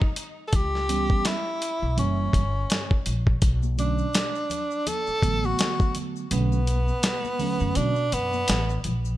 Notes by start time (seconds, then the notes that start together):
Already playing: D#4
0.02 kick
0.16 closed hi-hat
0.48 A4
0.53 C#2 G4, kick, closed hi-hat
0.75 snare
0.88 E3 G3 B3 C#4, closed hi-hat
1.10 kick
1.25 E4, snare, closed hi-hat
1.62 closed hi-hat
1.82 B1
1.97 F#1 E3 G3 A#3 C#4, closed hi-hat
2.33 G1, kick, closed hi-hat
2.70 snare, closed hi-hat
2.91 kick
3.06 A#1, closed hi-hat
3.27 kick
3.42 B1, kick, closed hi-hat, maracas
3.63 high conga, maracas
3.77 D3 F#3 A3 C#4 D4, closed hi-hat, maracas
3.99 maracas
4.13 snare, closed hi-hat, maracas
4.35 maracas
4.50 closed hi-hat, low conga, maracas
4.71 maracas
4.87 A4, closed hi-hat, high conga, low conga, maracas
5.07 muted upright bass stroke, maracas
5.22 A1 D3 F#3 A3 B3, kick, closed hi-hat, maracas
5.44 F#4, high conga, maracas
5.58 snare, closed hi-hat, maracas
5.80 kick, maracas
5.95 closed hi-hat, low conga, maracas
6.16 maracas
6.31 B1 D3 F#3 A3 B3 C#4, closed hi-hat, maracas
6.52 high conga, maracas
6.67 closed hi-hat, high conga, maracas
6.88 maracas
7.03 snare, closed hi-hat, maracas
7.25 high conga, maracas
7.39 D3 F#3 A3 C#4, open hi-hat, low conga, maracas
7.60 F#2, maracas
7.75 B2 D4, closed hi-hat, high conga, low conga, maracas
7.96 maracas
8.12 F#2 B3, closed hi-hat, maracas
8.33 high conga, maracas
8.48 A1, snare, closed hi-hat, maracas
8.70 maracas
8.84 A#1, closed hi-hat, low conga, maracas
9.05 maracas